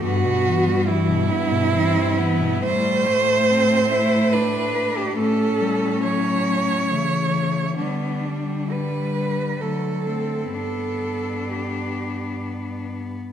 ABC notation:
X:1
M:3/4
L:1/16
Q:1/4=69
K:G
V:1 name="Cello"
F4 E8 | c8 B3 G | A4 ^c8 | D4 B4 A4 |
A4 G4 z4 |]
V:2 name="Cello"
B,4 G,2 B,2 C2 B,2 | A,4 C2 E2 D4 | ^C8 A,4 | B,2 G,6 A,2 C2 |
D8- D2 z2 |]
V:3 name="Cello" clef=bass
G,, B,, E, G, E, B,, G,, B,, E, G, E, B,, | G,2 A,8- A,2 | A,2 G,2 F,4 E,4 | G,4 G,4 F,2 A,2 |
B,8- B,3 z |]
V:4 name="Cello" clef=bass
G,,12 | A,,12 | A,,8 ^C,4 | D,8 D,4 |
G,,12 |]